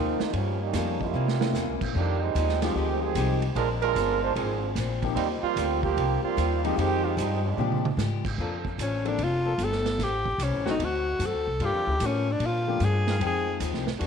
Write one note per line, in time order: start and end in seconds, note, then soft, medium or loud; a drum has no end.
0.00 0.19 D#2 medium
0.00 0.22 G#2 medium
0.00 0.32 D#3 medium
0.00 0.22 F3 medium
0.00 0.32 G#3 medium
0.00 0.18 A#3 medium
0.00 0.22 A#3 medium
0.00 0.32 A#3 medium
0.00 0.18 C4 medium
0.00 0.22 C4 medium
0.00 0.32 C4 medium
0.00 0.18 D#4 medium
0.00 0.18 F4 medium
0.00 0.32 F4 medium
0.20 0.33 F3 medium
0.20 0.34 A#3 medium
0.20 0.35 C4 medium
0.20 0.35 D#4 medium
0.20 muted upright bass stroke soft
0.20 snare medium
0.33 0.62 G2 soft
0.33 0.73 G2 medium
0.33 0.62 F3 soft
0.33 0.61 F3 medium
0.33 0.60 G3 medium
0.33 0.62 A#3 soft
0.33 0.60 A#3 medium
0.33 0.60 C#4 medium
0.33 0.63 C#4 soft
0.33 kick soft
0.33 ride medium
0.61 0.98 G3 medium
0.61 0.98 A#3 medium
0.61 0.99 C#4 medium
0.61 0.98 D#4 loud
0.73 1.13 F2 medium
0.73 1.02 G2 medium
0.73 0.99 F3 medium
0.73 1.03 F3 medium
0.73 0.99 G3 medium
0.73 0.99 A#3 medium
0.73 1.03 A#3 medium
0.73 0.99 C#4 medium
0.73 1.03 C#4 medium
0.73 0.99 F4 medium
0.73 kick soft
0.73 snare soft
0.73 hi-hat pedal medium
0.73 ride medium
1.01 1.82 G3 medium
1.01 1.82 A#3 medium
1.01 1.82 E4 loud
1.01 1.82 F4 medium
1.01 kick medium
1.14 1.53 C3 medium
1.14 1.42 C3 medium
1.14 1.43 E3 medium
1.14 1.43 A#3 medium
1.14 1.43 C#4 medium
1.28 snare medium
1.41 1.92 C#3 medium
1.41 1.92 A#3 medium
1.41 1.93 C4 medium
1.41 1.93 C#4 medium
1.41 1.93 E4 medium
1.41 snare loud
1.53 1.67 E2 medium
1.53 1.82 C3 medium
1.53 1.83 E3 medium
1.53 1.83 A#3 medium
1.53 1.83 C#4 medium
1.53 snare medium
1.53 hi-hat pedal medium
1.67 1.81 C2 medium
1.81 1.94 A#1 medium
1.81 kick medium
1.81 crash medium
1.94 2.34 F2 medium
1.94 2.19 D#3 medium
1.94 2.23 F3 soft
1.94 2.19 G3 medium
1.94 2.23 G#3 medium
1.94 2.20 A#3 medium
1.94 2.19 D4 loud
1.94 2.24 D#4 soft
1.94 2.24 G4 medium
1.94 kick soft
2.21 2.62 G3 medium
2.21 2.61 G#3 medium
2.21 2.62 C4 medium
2.21 2.61 D#4 medium
2.35 2.74 D#2 medium
2.35 2.63 F3 medium
2.35 2.63 G#3 medium
2.35 2.64 D#4 medium
2.35 2.64 G4 medium
2.35 kick soft
2.35 hi-hat pedal medium
2.35 ride medium
2.49 snare soft
2.62 3.13 F3 medium
2.62 2.75 G#3 medium
2.62 3.13 G#3 medium
2.62 3.13 C4 medium
2.62 2.75 C4 medium
2.62 2.75 D#4 medium
2.62 3.13 D#4 medium
2.62 2.75 F4 medium
2.62 3.13 G4 medium
2.62 snare soft
2.62 ride medium
2.75 3.14 D2 medium
2.75 3.02 D#3 medium
2.75 3.03 F3 medium
2.75 3.04 G#3 medium
2.75 3.02 G#3 medium
2.75 3.01 C4 medium
2.75 3.04 D#4 medium
2.75 3.01 G4 medium
2.75 3.05 G4 medium
2.75 kick soft
3.02 3.42 D#3 medium
3.02 3.42 C4 medium
3.02 3.42 G4 medium
3.02 3.42 G#4 medium
3.15 3.54 C2 medium
3.15 3.43 F3 medium
3.15 3.40 F3 medium
3.15 3.44 G#3 medium
3.15 3.40 G#3 medium
3.15 3.40 C4 soft
3.15 3.44 D#4 medium
3.15 3.40 D#4 medium
3.15 3.44 G4 medium
3.15 3.40 G4 medium
3.15 kick soft
3.15 hi-hat pedal medium
3.15 ride medium
3.42 ride medium
3.55 3.94 A#1 medium
3.55 3.83 A#2 soft
3.55 3.68 G#3 medium
3.55 3.84 G#3 soft
3.55 3.85 C4 soft
3.55 3.68 D4 loud
3.55 3.85 D4 medium
3.55 3.68 F4 medium
3.55 3.68 A#4 loud
3.55 kick soft
3.55 ride medium
3.82 4.19 G#3 medium
3.82 4.20 D4 medium
3.82 4.19 F4 loud
3.82 4.19 A#4 loud
3.82 ride soft
3.95 4.35 G1 medium
3.95 4.24 A#2 medium
3.95 4.24 G#3 medium
3.95 4.24 C4 medium
3.95 4.25 D4 medium
3.95 kick soft
3.95 hi-hat pedal medium
3.95 ride medium
4.22 4.35 G#3 medium
4.22 4.34 D4 medium
4.22 4.35 F4 medium
4.22 4.35 C5 loud
4.35 4.75 G#1 medium
4.35 4.64 A#2 medium
4.35 4.73 F3 medium
4.35 4.64 G#3 medium
4.35 4.73 C4 medium
4.35 4.65 C4 medium
4.35 4.73 D4 medium
4.35 4.65 D4 medium
4.35 4.73 G#4 medium
4.35 kick soft
4.35 ride medium
4.75 5.15 A#1 medium
4.75 5.04 A#2 medium
4.75 5.05 G#3 medium
4.75 5.05 C4 medium
4.75 5.05 D4 medium
4.75 kick soft
4.75 snare soft
4.75 hi-hat pedal medium
4.75 ride medium
5.03 5.15 F3 medium
5.03 5.15 A#3 medium
5.03 5.15 C4 medium
5.03 5.15 D#4 medium
5.03 5.16 G4 medium
5.03 kick medium
5.03 ride medium
5.15 5.41 D#2 medium
5.15 5.44 D#3 soft
5.15 5.27 G3 medium
5.15 5.45 G3 soft
5.15 5.27 A#3 medium
5.15 5.27 C4 medium
5.15 5.45 C4 medium
5.15 5.28 D#4 loud
5.15 5.45 F4 medium
5.15 kick soft
5.15 ride medium
5.42 5.80 G3 loud
5.42 5.80 A#3 medium
5.42 5.80 C4 loud
5.42 5.80 F4 loud
5.42 muted upright bass stroke soft
5.56 5.95 D2 medium
5.56 5.84 D#3 medium
5.56 5.85 G3 medium
5.56 5.85 C4 medium
5.56 5.85 F4 medium
5.56 kick soft
5.56 hi-hat pedal medium
5.56 ride medium
5.83 6.20 F3 loud
5.83 6.20 A#3 loud
5.83 6.20 C4 loud
5.83 6.20 G4 loud
5.83 kick medium
5.96 6.21 C2 medium
5.96 6.25 D#3 soft
5.96 6.25 G3 soft
5.96 6.25 C4 medium
5.96 6.26 F4 medium
5.96 kick soft
5.96 ride medium
6.23 6.61 G3 medium
6.23 6.61 A#3 medium
6.23 6.60 C4 medium
6.23 6.61 F4 loud
6.23 muted upright bass stroke soft
6.37 6.76 D#2 loud
6.37 6.65 D#3 medium
6.37 6.65 G3 medium
6.37 6.65 C4 medium
6.37 6.66 F4 medium
6.37 kick soft
6.37 hi-hat pedal medium
6.37 ride medium
6.64 6.76 F3 medium
6.64 6.77 G3 medium
6.64 6.76 G#3 medium
6.64 6.77 A#3 medium
6.64 6.77 C4 medium
6.64 6.76 C4 medium
6.64 6.77 D#4 loud
6.64 6.77 D#4 medium
6.64 6.76 G4 medium
6.64 ride medium
6.77 7.16 F2 medium
6.77 7.04 D#3 loud
6.77 7.05 F3 soft
6.77 7.01 F3 medium
6.77 7.05 G#3 medium
6.77 7.03 G#3 loud
6.77 7.01 G#3 medium
6.77 7.03 C4 loud
6.77 7.01 C4 medium
6.77 7.06 D#4 medium
6.77 7.02 D#4 medium
6.77 7.04 G4 loud
6.77 7.02 G4 medium
6.77 7.06 G4 medium
6.77 kick soft
6.77 ride medium
7.04 7.16 G#3 medium
7.04 7.17 C4 medium
7.04 7.16 D#4 medium
7.04 7.17 F4 loud
7.17 7.56 G2 loud
7.17 7.45 F3 medium
7.17 7.44 G3 medium
7.17 7.43 G#3 medium
7.17 7.45 G#3 medium
7.17 7.43 C4 medium
7.17 7.44 D#4 medium
7.17 7.46 D#4 medium
7.17 7.46 G4 medium
7.17 kick soft
7.17 hi-hat pedal medium
7.17 ride medium
7.44 7.94 F3 medium
7.44 7.94 G#3 medium
7.44 7.94 C4 medium
7.44 7.94 D4 medium
7.57 7.96 A#2 medium
7.57 7.86 A#2 soft
7.57 7.82 F3 medium
7.57 7.82 G#3 medium
7.57 7.86 G#3 medium
7.57 7.82 C4 medium
7.57 7.82 D4 medium
7.57 7.87 D4 medium
7.57 7.82 G4 medium
7.57 7.87 G4 medium
7.57 mid tom soft
7.72 mid tom medium
7.85 mid tom loud
7.97 8.36 G#2 medium
7.97 8.26 A#2 medium
7.97 8.26 G#3 medium
7.97 8.27 D4 medium
7.97 8.27 G4 medium
7.97 snare medium
7.97 hi-hat pedal medium
8.25 kick medium
8.25 crash medium
8.38 8.77 F2 medium
8.38 8.66 A#2 medium
8.38 8.57 F3 medium
8.38 8.67 F3 medium
8.38 8.67 A3 medium
8.38 8.57 A#3 medium
8.38 8.57 D4 medium
8.38 8.68 D4 medium
8.38 8.57 A4 medium
8.38 kick soft
8.65 kick soft
8.78 9.17 A1 medium
8.78 9.06 A#2 medium
8.78 9.07 F3 medium
8.78 9.07 A3 medium
8.78 9.07 D4 medium
8.78 kick soft
8.78 hi-hat pedal medium
8.78 ride medium
8.82 9.09 C#4 medium
9.05 9.17 F3 medium
9.05 9.17 A#3 medium
9.05 9.17 C4 medium
9.05 9.17 D4 medium
9.05 9.25 D4 medium
9.05 9.17 A4 medium
9.05 ride soft
9.18 9.57 F1 medium
9.18 9.47 A#2 medium
9.18 9.47 F3 soft
9.18 9.47 A3 medium
9.18 9.48 D4 soft
9.18 kick soft
9.18 ride medium
9.24 9.65 F4 medium
9.44 9.54 F3 medium
9.44 9.53 A#3 medium
9.44 9.53 D4 medium
9.44 9.53 A4 medium
9.58 9.97 G1 medium
9.58 9.87 A#2 medium
9.58 9.87 F3 medium
9.58 9.88 A3 medium
9.58 9.88 D4 medium
9.58 kick soft
9.58 hi-hat pedal medium
9.58 ride medium
9.64 10.05 A4 medium
9.72 snare soft
9.86 snare soft
9.86 ride soft
9.98 10.37 A1 medium
9.98 10.27 A2 soft
9.98 10.28 G3 soft
9.98 10.28 C4 medium
9.98 10.28 D#4 soft
9.98 kick soft
9.98 snare soft
9.98 ride medium
10.03 10.45 G4 medium
10.26 kick medium
10.38 10.52 C2 medium
10.38 10.68 A2 medium
10.38 10.68 G3 medium
10.38 10.68 C4 medium
10.38 kick soft
10.38 hi-hat pedal medium
10.38 ride medium
10.42 10.68 C#4 medium
10.42 10.69 D#4 medium
10.52 10.65 A1 medium
10.65 10.78 G1 medium
10.65 10.74 D3 medium
10.65 10.78 F#3 medium
10.65 10.75 A3 medium
10.65 10.78 A3 medium
10.65 10.74 C4 medium
10.65 10.78 C4 medium
10.65 10.78 D4 medium
10.65 10.75 F#4 loud
10.65 10.79 F#4 medium
10.65 snare soft
10.70 10.86 D#4 medium
10.79 11.18 D2 medium
10.79 11.08 D3 soft
10.79 11.08 A3 medium
10.79 11.09 C4 medium
10.79 kick soft
10.79 ride medium
10.83 11.09 F#4 medium
10.83 11.27 F#4 medium
11.19 11.33 F#2 medium
11.19 11.48 D3 medium
11.19 11.49 A3 medium
11.19 11.49 C4 medium
11.19 11.49 F#4 medium
11.19 kick soft
11.19 hi-hat pedal medium
11.19 ride medium
11.26 11.67 A4 medium
11.33 11.46 D2 medium
11.47 11.59 C2 medium
11.60 11.73 G2 medium
11.60 11.88 G2 medium
11.60 12.21 D3 medium
11.60 11.89 F3 soft
11.60 12.21 G3 medium
11.60 12.22 A#3 medium
11.60 11.89 A#3 medium
11.60 11.89 D4 medium
11.60 12.21 F4 loud
11.60 kick soft
11.60 ride medium
11.65 12.07 G4 medium
11.73 11.86 F2 medium
11.86 11.99 D2 medium
12.00 12.29 G2 medium
12.00 12.39 A2 medium
12.00 12.29 F3 medium
12.00 12.29 A#3 medium
12.00 12.29 D4 medium
12.00 kick soft
12.00 hi-hat pedal medium
12.00 ride medium
12.06 12.33 C#4 medium
12.31 12.47 D4 medium
12.39 12.68 G2 soft
12.39 12.79 A#2 medium
12.39 12.69 F3 medium
12.39 12.69 A#3 medium
12.39 12.70 D4 medium
12.39 kick soft
12.39 ride medium
12.46 12.86 F4 medium
12.67 12.79 F3 medium
12.67 12.79 A3 medium
12.67 12.79 A#3 medium
12.67 12.80 D4 medium
12.67 12.80 G4 medium
12.80 13.19 G2 loud
12.80 13.09 G2 medium
12.80 13.09 F3 medium
12.80 13.10 A#3 medium
12.80 13.10 D4 medium
12.80 kick soft
12.80 hi-hat pedal medium
12.80 ride medium
12.84 13.23 G#4 medium
13.07 13.16 D#3 medium
13.07 13.16 G#3 medium
13.07 13.16 C4 medium
13.07 13.16 F4 loud
13.07 snare medium
13.07 ride soft
13.20 13.59 F2 medium
13.20 13.49 F2 soft
13.20 13.49 D#3 soft
13.20 13.82 F3 medium
13.20 13.82 G#3 medium
13.20 13.50 G#3 soft
13.20 13.83 C4 medium
13.20 13.50 C4 soft
13.20 13.83 D#4 medium
13.20 13.83 G5 medium
13.20 kick soft
13.20 ride medium
13.26 13.61 G#4 medium
13.60 13.73 D#2 medium
13.60 13.89 F2 medium
13.60 13.90 D#3 medium
13.60 13.90 G#3 medium
13.60 13.90 C4 medium
13.60 kick soft
13.60 hi-hat pedal medium
13.60 ride medium
13.73 13.85 C2 medium
13.73 snare soft
13.86 13.99 G#1 medium
13.86 snare soft
13.98 14.07 E2 medium
13.98 14.07 E3 medium
13.98 14.07 G#3 medium
13.98 14.07 D4 medium
13.98 14.07 F#4 medium
13.98 kick soft
13.98 ride medium
14.03 14.07 G#3 medium